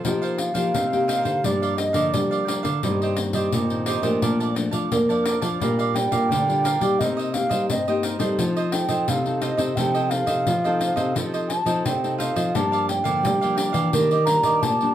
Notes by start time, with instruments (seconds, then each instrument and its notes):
0.04 nylon-string guitar F3 A#3 D#4 G4, cavaquinho D#4 A#4 C5 F5, pandeiro
0.22 cavaquinho A#4 C5 F5, pandeiro
0.38 flute F5, muted cavaquinho stroke, pandeiro
0.54 nylon-string guitar F3 A#3 D#4 G4, cavaquinho A#4 C5 F5, pandeiro
0.74 nylon-string guitar C3, cavaquinho D#4 A#4 C5 F5, pandeiro
0.92 nylon-string guitar A#3 D#4 G4, pandeiro
1.08 cavaquinho D#4 A#4 C5 F5, pandeiro
1.23 nylon-string guitar D3, cavaquinho A#4 C5 F5, pandeiro
1.44 nylon-string guitar G2 F3 G3 A#3 D4, cavaquinho G4 A#4 D5 F5, flute D5, pandeiro
1.62 cavaquinho A#4 D5 F5, pandeiro
1.77 flute D#5, muted cavaquinho stroke, pandeiro
1.93 nylon-string guitar D3 F3 A#3 D4, cavaquinho A#4 D5 F5, pandeiro
2.13 nylon-string guitar D3 G3, flute D5, pandeiro
2.31 cavaquinho A#4 D5 F5, pandeiro
2.46 nylon-string guitar F3 A#3 D4, cavaquinho G4 A#4 D5 F5, pandeiro
2.63 nylon-string guitar D3, cavaquinho A#4 D5 F5, pandeiro
2.83 nylon-string guitar G2 D#3 G3 A#3 C4, cavaquinho D#4 G4 C5 D#5, pandeiro
3.02 cavaquinho G4 C5 D#5, pandeiro
3.17 nylon-string guitar D#3 A#3 C4, muted cavaquinho stroke, pandeiro
3.33 nylon-string guitar G3, cavaquinho G4 C5 D#5, pandeiro
3.52 nylon-string guitar G2 A#2, cavaquinho D#4 G4 C5 D#5, pandeiro
3.70 nylon-string guitar D#3 A#3 C4, pandeiro
3.86 cavaquinho D#4 G4 C5 D#5, pandeiro
4.02 nylon-string guitar A#2 F3 A3 D4, cavaquinho G4 C5 D#5, pandeiro
4.22 nylon-string guitar A#2, cavaquinho A#4 D5 F5 A5, pandeiro
4.40 cavaquinho D5 F5 A5, pandeiro
4.55 nylon-string guitar F3 A3 D4, muted cavaquinho stroke, pandeiro
4.71 nylon-string guitar F3, cavaquinho D5 F5 A5, pandeiro
4.91 nylon-string guitar F2 A#3, pandeiro
5.09 nylon-string guitar F3 D4, cavaquinho D5 F5 A5, pandeiro
5.25 cavaquinho A#4 D5 F5 A5, pandeiro
5.41 nylon-string guitar F3, cavaquinho D5 F5 A5, pandeiro
5.60 nylon-string guitar A#2 G3 D4 F4, cavaquinho G4 A#4 D5 F5, pandeiro
5.79 cavaquinho A#4 D5 F5, pandeiro
5.94 nylon-string guitar G3 D4 F4, flute G5, muted cavaquinho stroke, pandeiro
6.12 nylon-string guitar A#2, cavaquinho A#4 D5 F5, pandeiro
6.29 nylon-string guitar A#2 D3, cavaquinho G4 A#4 D5 F5, pandeiro
6.48 nylon-string guitar G3 D4 F4, pandeiro
6.64 cavaquinho G4 A#4 D5 F5, pandeiro
6.80 nylon-string guitar G3 A#3 D#4 G4, cavaquinho A#4 D5 F5, pandeiro
6.99 nylon-string guitar C3, cavaquinho D#4 A#4 C5 D#5, flute D#5, pandeiro
7.17 cavaquinho A#4 C5 D#5, pandeiro
7.33 nylon-string guitar A#3 D#4 G4, flute F5, muted cavaquinho stroke, pandeiro
7.49 nylon-string guitar G3, cavaquinho A#4 C5 D#5, pandeiro
7.70 nylon-string guitar G2 C4, flute D#5, pandeiro
7.88 nylon-string guitar A#3 D#4 G4, cavaquinho A#4 C5 D#5, pandeiro
8.03 cavaquinho D#4 A#4 C5 D#5, pandeiro
8.19 nylon-string guitar G3 C4 D#4 A4, cavaquinho A#4 C5 D#5, pandeiro
8.38 nylon-string guitar F3, cavaquinho F4 A4 C5 D#5, pandeiro
8.57 cavaquinho A4 C5 D#5, pandeiro
8.72 nylon-string guitar C4 D#4 A4, flute G5, muted cavaquinho stroke, pandeiro
8.88 nylon-string guitar F3, cavaquinho A4 C5 D#5, pandeiro
9.08 nylon-string guitar C3, cavaquinho F4 A4 C5 D#5, flute F5, pandeiro
9.26 nylon-string guitar C4 D#4 A4, pandeiro
9.41 cavaquinho F4 A4 C5 D#5, flute D#5, pandeiro
9.57 nylon-string guitar C3 C4 D#4 A4, cavaquinho A4 C5 D#5, pandeiro
9.76 nylon-string guitar C3 F3 C4 D#4 A4, cavaquinho F4 A4 C5 D#5, flute G5, pandeiro
9.94 cavaquinho A4 C5 D#5, pandeiro
10.10 nylon-string guitar C4 D#4 A4, flute F5, muted cavaquinho stroke, pandeiro
10.27 nylon-string guitar C3, cavaquinho A4 C5 D#5, pandeiro
10.47 nylon-string guitar C3 F3, pandeiro
10.64 nylon-string guitar C4 D#4 A4, cavaquinho A4 C5 D#5, pandeiro
10.79 cavaquinho F4 A4 C5 D#5, pandeiro
10.96 nylon-string guitar C3, cavaquinho A4 C5 D#5, pandeiro
11.15 nylon-string guitar F3 C4 D#4 A4, cavaquinho F4 A4 C5 D#5, pandeiro
11.34 cavaquinho A4 C5 D#5, pandeiro
11.49 flute A5, muted cavaquinho stroke, pandeiro
11.66 nylon-string guitar F3 C4 D#4 A4, cavaquinho A4 C5 D#5, pandeiro
11.85 nylon-string guitar C3, cavaquinho F4 A4 C5 D#5, flute G5, pandeiro
12.04 nylon-string guitar C4 D#4 A4, pandeiro
12.18 cavaquinho F4 A4 C5 D#5, flute F5, pandeiro
12.36 nylon-string guitar F3, cavaquinho A4 C5 D#5, pandeiro
12.55 nylon-string guitar G2 F3 G3 A#3 D4, cavaquinho G4 A#4 D5 F5, flute A5, pandeiro
12.72 cavaquinho A#4 D5 F5, pandeiro
12.88 flute G5, muted cavaquinho stroke, pandeiro
13.04 nylon-string guitar D3 F3 A#3 D4, cavaquinho A#4 D5 F5, pandeiro
13.23 nylon-string guitar D3 G3, pandeiro
13.41 nylon-string guitar F3 A#3 D4, cavaquinho A#4 D5 F5, pandeiro
13.57 cavaquinho G4 A#4 D5 F5, pandeiro
13.73 nylon-string guitar E3, cavaquinho A#4 D5 F5, pandeiro
13.93 nylon-string guitar D#3 G3 A#3 D4, cavaquinho D4 G4 D5 D#5, pandeiro
14.11 cavaquinho G4 D5 D#5, pandeiro
14.26 nylon-string guitar G3 A#3 D4, flute A#5, muted cavaquinho stroke, pandeiro
14.43 nylon-string guitar D#3, cavaquinho G4 D5 D#5, pandeiro
14.62 nylon-string guitar A#2, cavaquinho G4 D5 D#5, flute A5, pandeiro
14.81 nylon-string guitar G3 A#3 D4, pandeiro